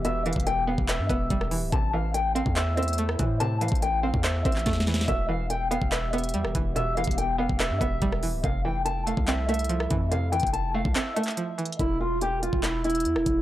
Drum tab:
HH |x-----------x---x---x---x-----------------------x-----------x-----------x-----------o-----------|x-----------------------x-----------x-----------x-----------x--x--x--x--x-----------x-----------|x-----------x---x---x---x-----------------------x-----------x---x---x---x-----------x---x---x---|x-----------------------x-----------x-----------x-----------x--x--x--x--x-----------x-----------|
CP |------------------------------------------------x-----------------------------------------------|------------------------------------------------x-----------------------------------------------|------------------------------------------------x-----------------x-----------------------------|------------------------------------------------x-----------------------------------------------|
SD |------------------------------------------------------------------------------r-----------------|------------------------------------------------------------------------------r-----------------|------------------------------------------------------------------------o---o---o---o---o---o---|------------------------------------------------------------------------------r-----------------|
BD |------------------o-----------------------o-----------------o-----------o-----------------------|o-----------------------------------------o-----------------------------------------o-----------|------------------o-----------------------o-----------------o-----------o-----------------------|o-----------------------------------------o-----------------------------------------o-----------|

HH |x-----------x---x---x---x-----------------------x-----------x-----------x-----------o-----------|x-----------------------x-----------x-----------x-----------x--x--x--x--x-----------x-----------|x-----------x---x---x---x-----------------------x-----------x---x---x---x-----------x---x---x---|x-----------------------x-----------x-----------x-----------x--x--x--x--x-----------x-----------|
CP |------------------------------------------------x-----------------------------------------------|------------------------------------------------x-----------------------------------------------|------------------------------------------------x-----------------x-----------------------------|------------------------------------------------x-----------------------------------------------|
SD |------------------------------------------------------------------------------r-----------------|------------------------------------------------------------------------------r-----------------|------------------------------------------------------------------------------------------------|------------------------------------------------------------------------------r-----------------|
BD |------------------o-----------------------o-----------------o-----------o-----------------------|o-----------------------------------------o-----------------------------------------o-----------|------------------o-----------------------o-----------------------------------------------------|o-----------------------------------------o-----------------------------------------o-----------|